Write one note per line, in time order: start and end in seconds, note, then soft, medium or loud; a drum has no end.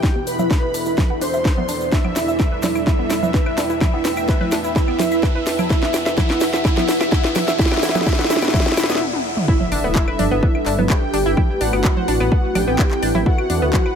0.00 9.01 E2 medium
0.00 9.01 B2 medium
0.00 3.77 D4 medium
0.00 2.68 E4 medium
0.00 0.10 E4 medium
0.00 0.18 G4 loud
0.00 1.90 A4 medium
0.00 1.90 E5 medium
0.00 0.18 G5 loud
0.00 kick loud
0.00 snare medium
0.00 riser medium
0.00 shaker soft
0.16 0.22 B3 medium
0.27 0.37 D2 medium
0.27 1.12 B4 loud
0.27 1.12 B5 loud
0.27 open hi-hat loud
0.27 shaker medium
0.39 0.48 C2 medium
0.39 2.68 D5 medium
0.39 0.46 E5 medium
0.39 low conga medium
0.39 shaker soft
0.51 0.57 B4 medium
0.51 kick loud
0.51 snare medium
0.51 shaker soft
0.63 0.69 B4 loud
0.74 0.84 D2 medium
0.74 0.81 D4 medium
0.74 open hi-hat loud
0.74 shaker medium
0.85 0.96 D2 medium
0.85 0.93 E4 medium
0.85 shaker medium
0.97 kick loud
0.97 snare medium
0.97 low conga medium
0.97 shaker soft
1.10 1.16 F#5 medium
1.21 1.31 D2 medium
1.21 1.26 D4 loud
1.21 1.92 C5 loud
1.21 1.92 C6 loud
1.21 open hi-hat loud
1.21 shaker loud
1.33 1.43 D2 medium
1.33 1.40 E5 medium
1.33 shaker soft
1.45 1.52 B4 medium
1.45 kick loud
1.45 snare medium
1.45 shaker soft
1.57 1.61 B3 loud
1.57 low conga medium
1.69 1.79 D2 loud
1.69 1.76 D4 medium
1.69 open hi-hat loud
1.69 shaker medium
1.81 1.90 D2 medium
1.81 shaker medium
1.92 3.79 G3 medium
1.92 4.39 D4 medium
1.92 2.85 E4 medium
1.92 1.99 E4 medium
1.92 3.79 A4 medium
1.92 2.85 E5 loud
1.92 kick loud
1.92 snare medium
1.92 shaker soft
2.05 2.11 B3 medium
2.05 low conga medium
2.05 claves medium
2.13 2.26 G1 loud
2.13 3.81 B4 medium
2.13 snare medium
2.13 open hi-hat loud
2.13 shaker loud
2.28 2.37 D1 medium
2.28 2.35 E5 medium
2.28 shaker medium
2.39 2.46 B4 medium
2.39 kick loud
2.39 snare medium
2.39 claves medium
2.39 shaker soft
2.52 2.58 B4 medium
2.62 2.73 G1 loud
2.62 2.70 D4 medium
2.62 snare medium
2.62 open hi-hat loud
2.62 low conga medium
2.62 shaker medium
2.75 2.85 G1 medium
2.75 2.82 E4 medium
2.75 4.57 G5 medium
2.75 claves medium
2.75 shaker medium
2.87 3.79 E4 loud
2.87 2.94 E4 medium
2.87 3.79 E5 loud
2.87 kick loud
2.87 snare medium
2.87 shaker soft
2.99 3.05 B3 medium
3.10 snare medium
3.10 open hi-hat loud
3.10 claves medium
3.10 shaker loud
3.23 3.32 G1 medium
3.23 3.29 E5 medium
3.23 low conga medium
3.23 shaker soft
3.34 3.41 B4 medium
3.34 kick loud
3.34 snare medium
3.34 shaker soft
3.46 3.53 B4 medium
3.46 claves medium
3.58 3.68 G1 medium
3.58 3.65 D4 medium
3.58 snare medium
3.58 open hi-hat loud
3.58 shaker medium
3.70 3.79 G1 medium
3.70 3.76 E4 medium
3.70 shaker medium
3.81 5.68 A3 medium
3.81 4.74 E4 loud
3.81 7.55 E4 medium
3.81 9.01 E4 medium
3.81 3.88 E4 medium
3.81 7.55 B4 medium
3.81 4.74 E5 loud
3.81 kick loud
3.81 snare medium
3.81 low conga medium
3.81 claves medium
3.81 shaker soft
3.94 4.00 B3 medium
4.05 4.15 A1 medium
4.05 snare medium
4.05 open hi-hat loud
4.05 shaker medium
4.17 4.26 G1 medium
4.17 4.24 E5 medium
4.17 claves medium
4.17 shaker soft
4.28 4.35 B4 medium
4.28 kick loud
4.28 snare medium
4.28 shaker soft
4.41 4.47 B4 loud
4.41 low conga loud
4.51 4.62 A1 loud
4.51 4.59 D4 medium
4.51 snare medium
4.51 open hi-hat loud
4.51 claves medium
4.51 shaker medium
4.64 4.74 A1 medium
4.64 4.71 E4 medium
4.64 6.46 A5 medium
4.64 shaker medium
4.76 5.68 E4 loud
4.76 4.83 E4 medium
4.76 5.68 E5 loud
4.76 kick loud
4.76 snare medium
4.76 shaker soft
4.88 4.94 B3 medium
4.88 claves medium
4.99 snare medium
4.99 open hi-hat loud
4.99 low conga loud
4.99 shaker medium
5.11 5.21 A1 medium
5.11 5.18 E5 medium
5.11 shaker soft
5.23 5.30 B4 medium
5.23 kick loud
5.23 snare medium
5.23 claves medium
5.23 shaker soft
5.35 5.42 B4 loud
5.46 5.57 A1 medium
5.46 5.54 D4 medium
5.46 snare medium
5.46 open hi-hat loud
5.46 shaker medium
5.59 5.68 A1 medium
5.59 5.65 E4 medium
5.59 low conga medium
5.59 claves medium
5.59 shaker medium
5.70 6.16 E4 loud
5.70 5.77 E4 medium
5.70 6.16 E5 loud
5.70 7.57 F#5 medium
5.70 kick loud
5.70 snare medium
5.70 shaker soft
5.83 5.89 B3 medium
5.83 9.01 F#5 medium
5.83 snare medium
5.94 6.04 E2 loud
5.94 snare medium
5.94 open hi-hat loud
5.94 claves medium
5.94 shaker medium
6.06 6.15 D2 medium
6.06 6.13 E5 medium
6.06 snare medium
6.06 shaker medium
6.15 6.24 E4 medium
6.15 6.63 E4 loud
6.15 7.59 G4 medium
6.15 6.63 E5 loud
6.15 kick loud
6.15 snare loud
6.15 low conga medium
6.15 shaker soft
6.30 6.36 B3 medium
6.30 snare medium
6.30 claves medium
6.40 6.51 E2 loud
6.40 snare medium
6.40 open hi-hat loud
6.40 shaker medium
6.53 6.63 E2 medium
6.53 6.60 E5 medium
6.53 snare medium
6.53 shaker soft
6.65 7.10 E4 loud
6.65 6.72 E4 medium
6.65 7.10 E5 loud
6.65 kick loud
6.65 snare medium
6.65 claves medium
6.65 shaker soft
6.77 6.83 B3 medium
6.77 snare medium
6.77 low conga loud
6.88 6.98 E2 loud
6.88 snare loud
6.88 open hi-hat loud
6.88 shaker medium
7.01 7.10 E2 medium
7.01 7.07 E5 medium
7.01 snare medium
7.01 claves medium
7.01 shaker soft
7.12 7.57 E4 loud
7.12 7.19 E4 medium
7.12 7.57 E5 loud
7.12 kick loud
7.12 snare loud
7.12 shaker soft
7.24 7.31 B3 medium
7.24 snare medium
7.35 7.46 E2 loud
7.35 snare loud
7.35 open hi-hat loud
7.35 low conga loud
7.35 claves medium
7.35 shaker medium
7.48 7.57 E2 medium
7.48 7.54 E5 medium
7.48 snare medium
7.48 shaker medium
7.59 9.00 D4 medium
7.59 7.66 E4 medium
7.59 7.81 E4 loud
7.59 9.00 A4 medium
7.59 9.00 E5 medium
7.59 7.81 E5 loud
7.59 kick loud
7.59 snare loud
7.59 shaker soft
7.65 snare medium
7.72 7.78 B3 medium
7.72 snare medium
7.72 claves medium
7.77 snare medium
7.83 7.93 D2 loud
7.83 8.05 E4 loud
7.83 7.90 E4 medium
7.83 8.05 E5 loud
7.83 snare loud
7.83 open hi-hat loud
7.83 shaker medium
7.89 snare medium
7.95 8.04 C2 medium
7.95 8.02 B3 medium
7.95 9.01 D5 medium
7.95 snare medium
7.95 low conga medium
7.95 shaker medium
8.01 snare medium
8.06 8.28 E4 loud
8.06 8.13 E4 medium
8.06 8.28 E5 loud
8.06 kick loud
8.06 snare loud
8.06 claves medium
8.06 shaker soft
8.13 snare medium
8.19 8.25 B3 medium
8.19 snare medium
8.24 snare medium
8.30 8.40 D2 loud
8.30 8.52 E4 loud
8.30 8.37 E4 medium
8.30 8.52 E5 loud
8.30 snare loud
8.30 open hi-hat loud
8.30 shaker medium
8.36 snare medium
8.42 8.51 D2 medium
8.42 8.49 B3 medium
8.42 snare loud
8.42 claves medium
8.42 shaker medium
8.48 snare medium
8.54 8.75 E4 loud
8.54 8.61 E4 medium
8.54 8.76 E5 loud
8.54 kick loud
8.54 snare loud
8.54 low conga loud
8.54 shaker soft
8.60 snare medium
8.66 8.72 B3 medium
8.66 snare medium
8.72 snare medium
8.77 8.87 D2 loud
8.77 8.99 E4 loud
8.77 8.84 E4 medium
8.77 8.99 E5 loud
8.77 snare loud
8.77 open hi-hat loud
8.77 claves medium
8.77 shaker medium
8.83 snare loud
8.89 8.99 D2 medium
8.89 8.96 B3 medium
8.89 snare medium
8.89 shaker medium
8.95 snare medium
9.01 high tom medium
9.13 high tom medium
9.37 mid tom medium
9.48 11.35 G3 medium
9.48 11.35 D4 medium
9.48 12.13 D4 medium
9.48 10.81 E4 loud
9.48 9.52 E4 medium
9.48 11.35 A4 medium
9.48 10.81 E5 loud
9.48 9.52 E5 medium
9.48 kick loud
9.48 impact medium
9.60 low conga medium
9.72 9.82 G1 loud
9.72 9.82 D4 medium
9.72 9.82 D5 medium
9.72 open hi-hat loud
9.72 claves medium
9.84 9.93 D1 medium
9.84 9.94 B3 medium
9.84 9.94 B4 medium
9.95 10.00 E4 medium
9.95 12.13 B4 medium
9.95 10.00 E5 medium
9.95 kick loud
9.95 clap loud
10.08 10.14 B4 medium
10.08 10.14 B5 medium
10.08 claves medium
10.19 10.29 G1 loud
10.19 10.23 D4 loud
10.19 10.23 D5 medium
10.19 open hi-hat loud
10.19 low conga medium
10.31 10.40 G1 medium
10.31 10.41 B3 loud
10.31 10.41 B4 medium
10.43 10.47 B3 medium
10.43 10.47 B4 medium
10.43 kick loud
10.55 claves medium
10.66 10.76 G1 loud
10.66 10.77 D4 medium
10.66 10.77 D5 medium
10.66 clap soft
10.66 open hi-hat loud
10.79 10.88 G1 medium
10.79 10.88 B3 medium
10.79 10.88 B4 medium
10.79 low conga medium
10.90 10.94 E4 medium
10.90 11.62 G4 loud
10.90 10.94 E5 medium
10.90 11.61 G5 loud
10.90 kick loud
10.90 clap loud
10.90 claves medium
11.13 11.23 G1 loud
11.13 11.18 D4 loud
11.13 11.18 D5 medium
11.13 open hi-hat loud
11.26 11.35 G1 medium
11.26 11.32 E4 loud
11.26 11.32 E5 medium
11.37 13.24 A3 medium
11.37 13.26 C4 medium
11.37 13.95 E4 medium
11.37 11.41 E4 medium
11.37 13.95 B4 medium
11.37 11.41 E5 medium
11.37 kick loud
11.37 low conga medium
11.37 claves soft
11.61 11.71 A1 loud
11.61 11.71 D4 medium
11.61 12.57 F#4 loud
11.61 11.71 D5 medium
11.61 12.55 F#5 loud
11.61 open hi-hat loud
11.73 11.82 G1 medium
11.73 11.83 B3 medium
11.73 11.83 B4 medium
11.73 claves medium
11.80 13.95 A4 medium
11.84 11.89 E4 medium
11.84 11.89 E5 medium
11.84 kick loud
11.84 clap loud
11.97 12.03 C5 medium
11.97 12.03 C6 medium
11.97 low conga medium
12.08 12.18 A1 medium
12.08 12.12 D4 loud
12.08 12.12 D5 medium
12.08 open hi-hat loud
12.20 12.29 A1 medium
12.20 12.30 B3 loud
12.20 12.30 B4 medium
12.20 13.95 E5 medium
12.20 claves medium
12.32 12.36 B3 medium
12.32 12.36 B4 medium
12.32 kick loud
12.55 12.65 A1 loud
12.55 12.66 D4 medium
12.55 13.17 G4 loud
12.55 12.66 D5 medium
12.55 13.17 G5 loud
12.55 open hi-hat loud
12.55 low conga medium
12.55 claves medium
12.68 12.77 A1 medium
12.68 12.77 B3 medium
12.68 12.77 B4 medium
12.79 12.83 E4 medium
12.79 12.83 E5 medium
12.79 kick loud
12.79 clap loud
12.91 clap soft
13.03 13.12 A1 loud
13.03 13.07 D4 loud
13.03 13.07 D5 medium
13.03 open hi-hat loud
13.03 claves medium
13.15 13.24 A1 medium
13.15 13.21 E4 loud
13.15 13.21 E5 medium
13.15 low conga medium
13.26 13.30 E4 medium
13.26 13.95 E4 medium
13.26 13.95 F#4 loud
13.26 13.30 E5 medium
13.26 13.95 F#5 medium
13.26 13.95 F#5 loud
13.26 kick loud
13.38 claves medium
13.50 13.60 E2 loud
13.50 13.60 D4 medium
13.50 13.60 D5 medium
13.50 open hi-hat loud
13.62 13.71 D2 medium
13.62 13.72 B3 medium
13.62 13.72 B4 medium
13.62 13.95 F#5 medium
13.67 13.95 F#4 medium
13.73 13.78 E4 medium
13.73 13.78 E5 medium
13.73 kick loud
13.73 clap loud
13.73 low conga medium
13.86 13.92 B4 medium
13.86 13.92 B5 medium
13.86 claves medium